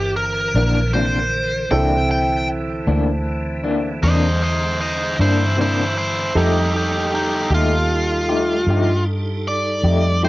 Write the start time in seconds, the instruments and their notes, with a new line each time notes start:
Already playing: fingered electric bass G1, tonewheel organ D3 E3 A#4, grand piano C4 E4 A#4, lead electric guitar G4
0.16 lead electric guitar A#4
0.54 fingered electric bass A#1, clean electric guitar E3 A#3 D4
0.94 clean electric guitar C3 E3 A#3 D4, lead electric guitar C5
1.69 fingered electric bass C2, clean electric guitar C3 E3 A#3 D4, tonewheel organ D3 E3, grand piano C4 E4 A4, lead electric guitar G5
2.11 lead electric guitar G5
2.87 fingered electric bass D2, clean electric guitar E3 A#3 D4
3.64 clean electric guitar E3 A#3 D4
4.03 fingered electric bass E2, clean electric guitar C3 E3 A#3 D4, lead electric guitar C5 D#5
4.43 lead electric guitar C5 D#5
4.81 lead electric guitar C5 D#5
5.19 fingered electric bass G2, clean electric guitar E3 A#3 D4, lead electric guitar E4 C5
5.57 clean electric guitar C3 E3 A#3 D4, lead electric guitar E4 C5
5.97 lead electric guitar E4 C5
6.35 fingered electric bass F2, clean electric guitar F3 A3 D#4 G4, tonewheel organ G3 D#4 A4, grand piano D#4 G4 A4, lead electric guitar D#4 G4
6.76 lead electric guitar D#4 G4
7.15 lead electric guitar D#4 G4
7.50 fingered electric bass D#2, clean electric guitar A3 D#4 G4
7.54 lead electric guitar F4
8.29 clean electric guitar A3 D#4 G4
8.67 fingered electric bass G2, clean electric guitar F3 A3 D#4 G4
9.48 lead electric guitar D5
9.83 fingered electric bass F2, clean electric guitar A3 D#4 G4
10.23 clean electric guitar F3 A3 D#4 G4, lead electric guitar C5